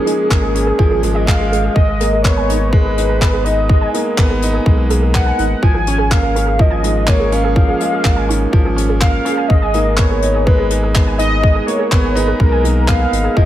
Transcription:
Already playing: F3 G#3 A#3 C#4 G#4
0.06 G#3 D#4, closed hi-hat
0.30 G#1 A#3, kick, clap
0.42 G#4
0.55 C#4, closed hi-hat
0.67 G#4
0.78 G#1 F3 G#4, kick
0.91 G#4
1.02 G#1 G#3 G#4, closed hi-hat
1.15 D#5
1.25 G#3 F5, kick, clap
1.40 G#4
1.52 G#3 G#4, closed hi-hat
1.64 G#4
1.74 G#1 G#3 G#4 D#5, kick
1.88 G#4
2.00 A#3 G#4, closed hi-hat
2.12 G#4
2.22 B3 C#5, kick, clap
2.36 G#5
2.49 D#4, closed hi-hat
2.71 G#3 B4, kick
2.85 G#4
2.98 D#4, closed hi-hat
3.09 G#4
3.21 B3 G#4, kick, clap
3.33 G#4
3.44 D#4 G#4 D#5, closed hi-hat
3.57 G#4
3.69 G#3, kick
3.81 G#5
3.94 A#3 D#4, closed hi-hat
4.18 G#1 B3, kick, clap
4.30 G#4
4.42 D#4, closed hi-hat
4.53 G#4
4.66 B1 G#3 G#4, kick
4.77 G#4
4.90 A#3 G#4, closed hi-hat
5.02 G#4
5.14 B3 F#5, kick, clap
5.26 G#5
5.39 G#1 D#4, closed hi-hat
5.63 G#1 F3 G#5, kick
5.74 G#4
5.87 C#4, closed hi-hat
5.98 G#4
6.11 A#3 F5, kick, clap
6.23 G#4
6.35 C#4 G#4, closed hi-hat
6.46 G#4
6.59 F3 D#5, kick
6.71 G#5
6.83 G#3 D#4, closed hi-hat
7.07 A#3 C#5, kick, clap
7.19 G#4
7.32 C#4 F5, closed hi-hat
7.44 G#4
7.56 F3 G#4, kick
7.68 G#4
7.80 G#3 G#4, closed hi-hat
7.93 G#4
8.05 G#1 A#3, kick, clap
8.16 G#5
8.29 C#4 D#4, closed hi-hat
8.53 G#1 F3, kick
8.65 G#4
8.76 C#4, closed hi-hat
8.89 G#4
9.01 A#3 G#4 F5, kick, clap
9.25 C#4 G#4, closed hi-hat
9.37 G#5
9.48 G#1 G#3 D#5, kick
9.62 G#5
9.74 A#3 D#4, closed hi-hat
9.96 B3 C#5, kick, clap
10.10 G#4
10.22 D#4, closed hi-hat
10.34 G#4
10.45 G#3 G#4 B4, kick
10.58 G#4
10.70 D#4 G#4, closed hi-hat
10.83 G#4
10.94 B3, kick, clap
11.07 G#5
11.18 D#4 D#5, closed hi-hat
11.43 G#3, kick
11.55 G#4
11.66 A#3 C#5, closed hi-hat
11.79 G#4
11.91 G#1 B3 G#4, kick, clap
12.03 G#4
12.15 D#4 G#4 B4, closed hi-hat
12.28 G#4
12.40 B1 G#3 A#4, kick
12.52 G#5
12.64 A#3 D#4, closed hi-hat
12.88 B3 F5, kick, clap
13.00 G#4
13.12 G#1 D#4, closed hi-hat
13.24 G#4
13.36 G#1 F3 G#4 D#5, kick

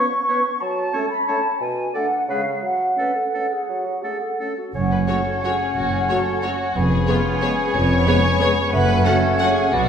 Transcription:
Already playing: C#6
0.28 B3 C#4 B4 C#5
0.60 F#3 A5
0.93 A3 C#4 A4 C#5
1.10 B5
1.26 A3 C#4 A4 C#5 A5
1.59 B2 G#5
1.93 A3 D4 A4 D5 F#5
2.28 C#3 G#3 C#4 G#4 B4 F5
2.63 F#3 F#5
2.97 A3 C#4 A4 B4
3.16 A4
3.34 A3 C#4 A4
3.52 G#4
3.69 F#3
3.85 F#4
4.02 A3 C#4 G#4 A4
4.21 A4
4.40 A3 C#4 A4
4.57 F#4
4.73 F#1 F#2 C#4 C#5 F#5
4.91 B4
5.08 F#3 A3 C#4 F#4 A4 C#5
5.43 F#3 A3 C#4 F#4 G#4 C#5
5.76 F#1 F#2 F#4
5.93 G#4
6.09 F#3 A3 C#4 F#4 A4 C#5
6.43 F#3 A3 C#4 F#4 C#5
6.75 F1 F2 B3 C#4 G#4 C#5 G#5
7.08 G#3 B3 F4 G#4 C#5
7.42 G#3 B3 G#4 C#5
7.75 F1 F2 C#5
8.07 G#3 B3 G#4 C#5
8.40 G#3 B3 G#4 C#5
8.72 F#1 F#2 A3 C#4 B4 C#5 F#5
9.05 F#3 C#4 F#4 A4 F#5
9.40 F#3 C#4 F#4 G#4 F#5
9.73 B1 B2 B3 F#4 D5

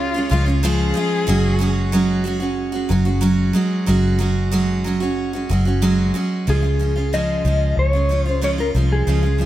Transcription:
Already playing: C#2 G#3 C#4 F4 C#5
0.00 F4
0.14 G#3 C#4 F4
0.29 C#2 F3 G#3 C#4 F4
0.46 G#3 C#4 F4
0.63 C#3 F3 G#3 C#4 F4 G#4
0.94 F3 G#3 C#4 F4
1.27 F#1 F#3 G#3 C#4 F#4
1.59 F#3 G#3 C#4 F#4
1.92 F#3 G#3 C#4 F#4
2.24 F#3 G#3 C#4 F#4
2.40 G#3 C#4 F#4
2.72 G#3 C#4 F#4
2.89 F#1 F#3 G#3 C#4 F#4
3.05 G#3 C#4 F#4
3.21 F#3 G#3 C#4 F#4
3.53 F#3 G#3 C#4 F#4
3.86 F#1 F#3 G#3 C#4 F#4
4.19 F#3 G#3 C#4 F#4
4.52 F#3 G#3 C#4 F#4
4.84 F#3 G#3 C#4 F#4
5.00 G#3 C#4 F#4
5.33 G#3 C#4 F#4
5.49 F#1 F#3 G#3 C#4 F#4
5.65 G#3 C#4 F#4
5.82 F#3 G#3 C#4 F#4
6.14 F#3 G#3 C#4 F#4
6.47 C#2 C#3 F3 G#3 C#4 F4 G#4
6.62 G#3 C#4 F4
6.79 F3 G#3 C#4 F4
6.96 G#3 C#4 F4
7.13 C#3 F3 G#3 C#4 F4 D#5
7.45 C#2 F3 G#3 C#4 F4
7.77 C#2 C#5
7.93 G#3 C#4 F4
8.09 F3 G#3 C#4 F4
8.25 G#3 C#4 F4 C5
8.41 C#3 F3 G#3 C#4 F4 C#5
8.58 G#3 C#4 F4 A#4
8.75 C2 F3 G#3 C#4 F4
8.92 G#4
9.07 C#2 C#3 F3 G#3 C#4 F4
9.23 G#3 C#4 F4
9.38 F3 G#3 C#4 F4

